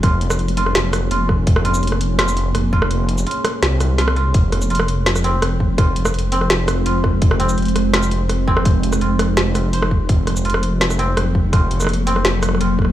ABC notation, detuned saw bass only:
X:1
M:4/4
L:1/8
Q:1/4=167
K:Gblyd
V:1 name="Detuned saw bass" clef=bass
F,,,2 F,,,4 F,,,2 | F,,,2 F,,,4 F,,,2- | F,,,2 z2 C,,4 | F,,,2 F,,,4 F,,,2- |
F,,,2 F,,,4 F,,,2 | F,,,2 F,,,4 F,,,2- | F,,,2 F,,,6 | F,,,2 F,,,4 F,,,2- |
F,,,2 F,,,4 F,,,2 |]